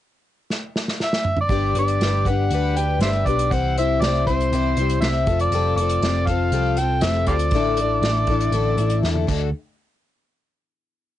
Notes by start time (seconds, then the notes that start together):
0.50 snare
0.76 snare
0.88 snare
1.00 E5, snare
1.13 snare
1.25 mid tom
1.37 D5, mid tom
1.49 G1 G3 D4 G4 B4, kick, closed hi-hat
1.75 G1 G4 B4, closed hi-hat
1.79 D4 D5
1.88 closed hi-hat
2.00 G1 G3 D4, snare, closed hi-hat
2.04 G4 B4
2.25 G4 B4 F#5, kick, closed hi-hat
2.30 D4
2.50 D2 G3 D4 G4, closed hi-hat
2.55 B4
2.76 D4 G4 B4 G5, closed hi-hat
2.99 G1 G3 D4 C5 E5, snare, closed hi-hat
3.04 G4 B4
3.26 B1 G4 B4 D5, kick, closed hi-hat
3.30 D4
3.39 closed hi-hat
3.51 C2 C3 E3 G3 C4 E4 C5 F#5, kick, closed hi-hat
3.78 G3 C4 E4 C5 E5, closed hi-hat
4.01 C2 G3 D5, snare, closed hi-hat
4.06 C4 E4 C5
4.26 C2 C4 E4 C5, kick, closed hi-hat
4.31 G3
4.40 closed hi-hat
4.52 C2 C3 E3 G3 C4 E4 C5, closed hi-hat
4.77 C2 E4 C5, closed hi-hat
4.81 G3 C4
4.89 closed hi-hat
5.01 C2 G3 C4 C5 E5, snare, closed hi-hat
5.05 E4
5.27 F1 F4 A4, kick, closed hi-hat
5.32 C4
5.39 D5, closed hi-hat
5.51 F1 F3 G3, closed hi-hat
5.55 C4 F4 A4
5.75 F1 D5, closed hi-hat
5.80 C4 F4 A4
5.89 closed hi-hat
6.01 F1 G3 C4 F4, snare, closed hi-hat
6.06 A4
6.27 F4 A4 F5, kick, closed hi-hat
6.31 C4
6.52 C2 F3 G3 C4 F4 A4, closed hi-hat
6.77 F4 A4 G5, closed hi-hat
6.82 C4
7.01 F1 G3 C4 F4 E5, snare, closed hi-hat
7.06 A4
7.26 D2 F4 G4 A4 D5, kick, closed hi-hat
7.31 C4 F4
7.39 closed hi-hat
7.51 A1 A2 D3, kick, closed hi-hat
7.55 A3 D4 E4 A4
7.77 E4 A4, closed hi-hat
7.82 A3 D4
8.02 A1 A3, snare, closed hi-hat
8.06 D4 E4 A4
8.27 A1 A4, kick, closed hi-hat
8.31 A3 D4 E4
8.41 closed hi-hat
8.51 A1 A2 D3 A3 D4 E4, closed hi-hat
8.56 A4
8.77 A1 D4 E4 A4, closed hi-hat
8.82 A3
8.90 closed hi-hat
9.03 E2 A3 D4 E4, snare
9.08 A4
9.15 high tom
9.27 D2 D3 A3 D4 F#4 A4, kick, crash